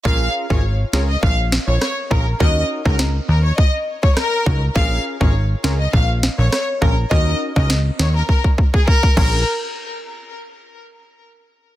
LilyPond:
<<
  \new Staff \with { instrumentName = "Violin section" } { \time 4/4 \key bes \minor \tempo 4 = 102 f''8 r16 des''16 r8 des''16 ees''16 f''16 r8 des''16 des''16 r16 bes'16 r16 | ees''8 r16 bes'16 r8 bes'16 des''16 ees''16 r8 des''16 bes'8. r16 | f''8 r16 des''16 r8 des''16 ees''16 f''16 r8 des''16 des''16 r16 bes'16 r16 | ees''8 r16 ees''16 r8 des''16 bes'16 bes'16 r8 aes'16 bes'8 bes'8 |
r1 | }
  \new Staff \with { instrumentName = "Synth stab" } { \time 4/4 \key bes \minor <des' f' aes' bes'>8. <des' f' aes' bes'>16 r8 <des' f' aes' bes'>16 r4. r16 <des' f' aes' bes'>16 r16 | <des' ees' ges' bes'>8. <des' ees' ges' bes'>16 r2 r8 <des' ees' ges' bes'>16 r16 | <des' f' aes' bes'>8. <des' f' aes' bes'>16 r8 <des' f' aes' bes'>16 r4. r16 <des' f' aes' bes'>16 r16 | <des' ees' ges' bes'>8. <des' ees' ges' bes'>16 r2 r8 <des' f' aes' bes'>8 |
r1 | }
  \new Staff \with { instrumentName = "Analog synth bass" } { \clef bass \time 4/4 \key bes \minor bes,,8 r16 aes,,8. des,8 bes,,8. bes,,16 r8 bes,,8 | ees,8 r16 des,8. ees,8 r4. des,8 | bes,,8 r16 aes,,8. des,8 bes,,8. bes,,16 r8 bes,,8 | ees,8 r16 des,8. ees,8 r4. bes,,8 |
r1 | }
  \new DrumStaff \with { instrumentName = "Drums" } \drummode { \time 4/4 bd8. bd16 r8 sn8 bd8 sn8 <ss sn>8 bd8 | bd8. bd16 sn4 bd8. bd16 <ss sn>8 bd8 | bd8. bd16 r8 sn8 bd8 sn8 <ss sn>8 bd8 | bd8. bd16 sn8 sn8 bd16 bd16 bd16 bd16 bd16 bd16 <cymc bd>8 |
r4 r4 r4 r4 | }
>>